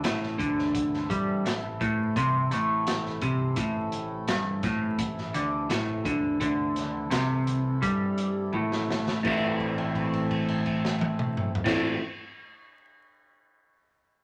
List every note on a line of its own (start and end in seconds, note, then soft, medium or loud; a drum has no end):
0.00 0.36 A1 medium
0.00 0.38 A2 loud
0.00 9.19 C3 medium
0.00 9.20 E3 medium
0.00 9.20 A3 medium
0.00 9.20 E4 medium
0.00 9.20 A4 medium
0.00 closed hi-hat medium
0.05 snare loud
0.23 snare soft
0.39 1.06 D2 medium
0.39 1.08 D3 medium
0.39 kick loud
0.39 closed hi-hat medium
0.59 snare soft
0.75 kick loud
0.75 closed hi-hat medium
0.94 snare soft
1.10 1.42 G2 medium
1.10 1.44 G3 loud
1.10 kick loud
1.10 closed hi-hat medium
1.45 1.78 A1 medium
1.45 1.73 A2 medium
1.45 snare loud
1.45 closed hi-hat medium
1.81 2.14 A1 medium
1.81 2.15 A2 medium
1.81 kick loud
1.81 closed hi-hat medium
2.16 2.49 C2 loud
2.16 2.50 C3 loud
2.16 kick loud
2.16 closed hi-hat loud
2.51 3.18 A1 medium
2.51 3.21 A2 loud
2.51 closed hi-hat medium
2.87 snare loud
2.87 closed hi-hat medium
3.06 snare soft
3.21 3.55 C2 medium
3.21 3.56 C3 loud
3.21 kick loud
3.21 closed hi-hat medium
3.56 4.24 A1 loud
3.56 4.27 A2 loud
3.56 kick loud
3.56 closed hi-hat loud
3.92 closed hi-hat medium
3.92 low conga medium
4.28 4.61 G1 medium
4.28 4.63 G2 loud
4.28 snare loud
4.28 closed hi-hat medium
4.46 high conga medium
4.63 4.96 A1 medium
4.63 4.98 A2 loud
4.63 kick loud
4.63 snare soft
4.63 closed hi-hat medium
4.63 low conga medium
4.98 5.32 A1 medium
4.98 5.28 A2 medium
4.98 kick medium
4.98 closed hi-hat medium
5.18 snare soft
5.34 5.68 D2 medium
5.34 5.69 D3 medium
5.34 closed hi-hat medium
5.70 6.03 A1 medium
5.70 6.04 A2 loud
5.70 snare loud
5.70 closed hi-hat medium
5.87 high conga medium
6.05 6.38 D2 medium
6.05 6.39 D3 loud
6.05 kick loud
6.05 closed hi-hat medium
6.05 high conga medium
6.05 low conga medium
6.23 high conga medium
6.40 7.08 D2 loud
6.40 7.10 D3 loud
6.40 kick medium
6.40 closed hi-hat medium
6.76 snare soft
6.76 closed hi-hat medium
6.76 low conga medium
7.10 7.79 C2 medium
7.10 7.81 C3 loud
7.10 snare loud
7.10 closed hi-hat medium
7.30 high conga medium
7.47 closed hi-hat medium
7.47 low conga medium
7.82 8.50 G2 medium
7.82 8.52 G3 medium
7.82 kick loud
7.82 closed hi-hat loud
7.82 low conga soft
8.18 closed hi-hat medium
8.53 9.20 A1 medium
8.53 9.22 A2 loud
8.53 high tom medium
8.53 high conga medium
8.71 snare medium
8.71 high conga medium
8.89 snare medium
8.89 low conga medium
9.06 snare medium
9.06 low conga medium
9.23 11.53 A1 loud
9.23 11.64 A2 medium
9.23 11.53 E3 medium
9.23 11.65 E3 medium
9.23 11.53 A3 medium
9.23 11.66 A3 medium
9.23 11.53 C4 medium
9.23 11.67 C4 loud
9.23 11.53 A4 medium
9.23 11.52 C5 medium
9.23 kick loud
9.23 crash medium
9.23 high conga medium
9.27 11.68 E4 loud
9.60 kick medium
9.60 crash soft
9.78 crash soft
9.95 kick medium
9.95 crash soft
10.13 crash soft
10.31 kick medium
10.31 crash soft
10.48 crash medium
10.66 kick medium
10.66 crash medium
10.85 snare medium
11.01 high tom loud
11.19 mid tom loud
11.37 mid tom medium
11.55 floor tom loud
11.64 11.95 A1 medium
11.64 11.97 A2 loud
11.64 11.95 E3 medium
11.64 11.98 E3 medium
11.64 11.95 A3 medium
11.64 11.98 A3 medium
11.64 11.95 C4 medium
11.64 11.98 C4 loud
11.64 11.99 E4 medium
11.64 11.95 A4 medium
11.64 11.96 C5 medium
11.64 kick loud
11.64 snare loud
11.64 crash loud